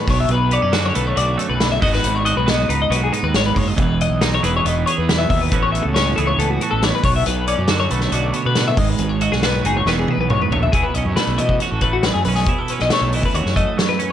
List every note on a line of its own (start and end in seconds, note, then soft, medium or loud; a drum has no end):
0.00 0.52 B3 medium
0.08 0.27 B1 medium
0.08 0.73 B2 medium
0.08 0.20 C#5 medium
0.08 kick loud
0.08 snare soft
0.08 open hi-hat medium
0.20 0.30 E5 medium
0.29 0.58 B1 loud
0.29 0.52 B4 medium
0.29 closed hi-hat medium
0.51 0.62 B3 medium
0.51 0.74 D5 medium
0.51 closed hi-hat medium
0.62 0.91 F#2 medium
0.62 1.82 C#4 medium
0.72 1.82 D3 medium
0.72 1.15 F#4 medium
0.72 snare loud
0.72 closed hi-hat medium
0.86 0.95 C#5 medium
0.95 1.15 B1 medium
0.95 1.36 A3 medium
0.95 1.07 B4 medium
0.95 closed hi-hat medium
1.07 1.17 C#5 medium
1.16 1.36 B1 loud
1.16 1.83 F#4 medium
1.16 1.41 D5 medium
1.16 closed hi-hat medium
1.37 1.79 F#2 medium
1.37 1.79 A3 medium
1.37 1.49 C#5 medium
1.37 closed hi-hat medium
1.49 1.78 B1 medium
1.49 1.71 B4 medium
1.60 snare loud
1.60 closed hi-hat medium
1.72 1.82 E5 medium
1.81 2.01 G#1 medium
1.81 3.11 G#2 medium
1.81 2.46 B3 medium
1.81 2.69 D#4 medium
1.81 2.26 F#4 medium
1.81 1.93 D#5 medium
1.81 kick loud
1.81 open hi-hat medium
1.93 2.16 B4 medium
1.93 snare soft
2.04 2.32 G#1 medium
2.04 closed hi-hat medium
2.16 2.25 C#5 medium
2.25 2.46 F#4 medium
2.25 2.36 D#5 medium
2.25 closed hi-hat medium
2.36 2.65 B1 medium
2.36 2.48 B4 medium
2.46 4.65 B3 medium
2.46 2.90 F#4 soft
2.46 2.69 D#5 medium
2.46 snare loud
2.46 closed hi-hat medium
2.69 2.88 C#2 medium
2.69 3.12 D#4 medium
2.69 2.80 B4 medium
2.69 closed hi-hat medium
2.82 2.92 D#5 medium
2.90 3.09 B1 medium
2.90 3.58 F#4 soft
2.90 3.02 B4 medium
2.90 closed hi-hat medium
3.04 3.13 G#4 medium
3.12 3.53 G#2 medium
3.12 3.53 D#4 medium
3.12 3.23 B4 medium
3.12 closed hi-hat medium
3.23 3.32 D#2 medium
3.23 3.34 B4 medium
3.34 3.54 G#1 medium
3.34 3.46 C#5 medium
3.34 snare loud
3.34 closed hi-hat medium
3.46 3.57 B4 medium
3.55 3.76 F#1 medium
3.55 3.74 G#2 medium
3.55 3.68 C#5 medium
3.55 kick medium
3.55 open hi-hat medium
3.68 3.80 D#5 medium
3.76 4.06 E1 medium
3.76 5.51 E2 medium
3.76 4.00 B4 medium
3.76 kick loud
3.76 closed hi-hat medium
4.01 4.22 D#5 medium
4.01 closed hi-hat medium
4.10 4.38 B1 medium
4.21 5.50 D#4 medium
4.21 snare loud
4.21 closed hi-hat medium
4.34 4.44 C#5 medium
4.43 4.62 E1 medium
4.43 5.49 E3 medium
4.43 4.87 G#4 medium
4.43 4.55 B4 medium
4.43 closed hi-hat medium
4.56 4.66 C#5 medium
4.65 4.84 E1 medium
4.65 5.09 B3 medium
4.65 4.86 D#5 medium
4.65 closed hi-hat medium
4.86 5.50 G#4 medium
4.86 4.98 C#5 medium
4.86 closed hi-hat medium
4.98 5.26 E2 medium
4.98 5.18 B4 medium
5.09 5.49 B2 medium
5.09 5.53 B3 medium
5.09 snare loud
5.09 closed hi-hat medium
5.19 5.29 E5 medium
5.30 5.49 D#2 medium
5.30 5.41 E5 medium
5.30 kick medium
5.30 open hi-hat medium
5.41 5.63 B4 medium
5.52 5.81 A1 medium
5.52 7.04 A2 medium
5.52 6.17 E3 soft
5.52 6.39 B3 medium
5.52 5.96 C#4 medium
5.52 6.18 F#4 medium
5.52 kick loud
5.52 closed hi-hat medium
5.62 5.72 C#5 medium
5.72 5.84 E5 medium
5.72 closed hi-hat medium
5.82 6.13 C#2 medium
5.82 5.94 A4 medium
5.94 7.02 C#4 medium
5.94 6.16 C#5 medium
5.94 snare loud
5.94 closed hi-hat medium
6.16 6.36 C#2 medium
6.16 7.02 E3 medium
6.16 6.61 G#4 soft
6.16 6.27 A4 medium
6.16 closed hi-hat medium
6.27 6.38 C#5 medium
6.38 6.57 C#2 medium
6.38 6.83 B3 medium
6.38 6.50 A4 medium
6.38 closed hi-hat medium
6.50 6.61 F#4 medium
6.61 7.70 F#4 medium
6.61 6.70 A4 medium
6.61 closed hi-hat medium
6.71 6.91 A1 medium
6.71 6.84 A4 medium
6.83 7.05 E2 medium
6.83 7.51 B3 soft
6.83 6.94 C#5 medium
6.83 snare medium
6.83 closed hi-hat medium
6.95 7.04 B4 medium
7.04 7.23 B1 medium
7.04 7.69 B2 medium
7.04 7.15 C#5 medium
7.04 kick loud
7.04 open hi-hat medium
7.16 7.26 E5 medium
7.26 7.54 B1 medium
7.26 7.47 B4 medium
7.26 closed hi-hat medium
7.48 8.75 C#4 medium
7.48 7.69 D5 medium
7.48 closed hi-hat medium
7.58 7.87 F#2 medium
7.68 8.78 D3 medium
7.68 8.11 F#4 medium
7.68 snare loud
7.68 closed hi-hat medium
7.80 7.91 C#5 medium
7.91 8.10 B1 medium
7.91 8.75 A3 medium
7.91 8.02 B4 medium
7.91 closed hi-hat medium
8.01 8.12 C#5 medium
8.01 snare soft
8.12 8.31 B1 loud
8.12 8.75 F#4 medium
8.12 8.35 D5 medium
8.12 closed hi-hat medium
8.33 8.56 B2 medium
8.33 8.45 C#5 medium
8.33 closed hi-hat medium
8.45 8.74 B2 medium
8.45 8.67 B4 medium
8.55 8.78 A2 medium
8.55 snare medium
8.55 closed hi-hat medium
8.68 8.78 E5 medium
8.77 8.96 G#1 medium
8.77 9.84 G#2 medium
8.77 8.89 D#5 medium
8.77 kick medium
8.77 open hi-hat medium
8.89 9.09 B4 medium
8.99 9.28 G#1 medium
8.99 closed hi-hat medium
9.09 9.22 C#5 medium
9.21 9.43 F#4 medium
9.21 9.32 D#5 medium
9.21 closed hi-hat medium
9.32 9.61 B1 medium
9.32 9.43 G#4 medium
9.32 snare soft
9.43 9.84 B3 medium
9.43 9.84 F#4 medium
9.43 9.65 B4 medium
9.43 snare medium
9.43 closed hi-hat medium
9.64 9.83 F#1 medium
9.64 9.84 D#4 medium
9.64 9.76 G#4 medium
9.64 closed hi-hat medium
9.77 9.87 C#5 medium
9.85 10.05 E1 medium
9.85 10.30 E2 medium
9.85 10.71 E3 medium
9.85 10.72 B3 medium
9.85 10.72 D#4 medium
9.85 9.99 B4 medium
9.85 snare medium
9.90 10.72 G#4 medium
9.99 10.11 G#4 medium
10.08 10.19 B4 medium
10.08 high tom medium
10.18 10.37 B1 medium
10.18 10.31 B4 medium
10.30 10.52 G#2 medium
10.30 10.41 C#5 medium
10.30 mid tom medium
10.42 10.52 B4 medium
10.42 mid tom medium
10.50 10.70 A#1 medium
10.50 10.74 A2 medium
10.50 10.62 C#5 medium
10.50 floor tom medium
10.63 10.73 E5 medium
10.63 floor tom medium
10.72 10.83 B1 medium
10.72 11.39 B2 medium
10.72 11.62 E4 medium
10.72 10.84 G#4 medium
10.72 kick loud
10.72 closed hi-hat medium
10.83 10.94 B4 medium
10.94 11.04 B1 medium
10.94 12.28 C#4 medium
10.94 11.06 D#5 medium
10.94 closed hi-hat medium
11.05 11.15 F#2 medium
11.05 11.16 C#5 medium
11.16 11.83 A3 soft
11.16 11.38 B4 medium
11.16 snare medium
11.16 closed hi-hat medium
11.27 11.37 B1 medium
11.38 11.58 B2 medium
11.38 13.14 E3 medium
11.38 11.60 D#5 medium
11.38 closed hi-hat medium
11.49 kick medium
11.60 12.49 F#4 medium
11.60 11.71 C#5 medium
11.60 closed hi-hat medium
11.71 12.09 A1 medium
11.71 11.82 A4 medium
11.81 12.52 A3 medium
11.81 11.93 B4 medium
11.81 kick medium
11.81 closed hi-hat medium
11.93 12.04 F#4 medium
12.03 12.45 F#2 medium
12.03 12.13 B4 medium
12.03 snare loud
12.03 closed hi-hat medium
12.14 12.24 F#2 medium
12.14 12.25 G#4 medium
12.25 12.44 B1 medium
12.25 12.52 C#4 medium
12.25 12.35 B4 medium
12.25 open hi-hat medium
12.35 12.58 G#4 medium
12.35 snare soft
12.46 13.13 B2 medium
12.46 13.35 E4 medium
12.46 kick loud
12.46 closed hi-hat medium
12.59 12.70 A4 medium
12.68 13.99 C#4 soft
12.68 12.80 B4 medium
12.68 closed hi-hat medium
12.79 12.90 B1 medium
12.79 12.91 D#5 medium
12.79 snare soft
12.90 13.56 A3 soft
12.90 13.14 C#5 medium
12.90 snare loud
12.90 closed hi-hat medium
13.01 13.20 B1 medium
13.12 14.12 E3 medium
13.12 13.24 D#5 medium
13.12 open hi-hat medium
13.23 13.35 B4 medium
13.23 kick medium
13.34 13.43 D#2 medium
13.34 14.12 F#4 medium
13.34 13.56 C#5 medium
13.34 closed hi-hat medium
13.46 13.64 F#2 medium
13.46 snare soft
13.56 14.12 A3 medium
13.56 13.78 D#5 medium
13.56 kick medium
13.56 closed hi-hat medium
13.77 14.12 F#2 medium
13.77 13.89 C#5 medium
13.77 snare medium
13.77 closed hi-hat medium
13.89 14.10 B4 medium
13.99 14.12 C#4 medium
13.99 closed hi-hat medium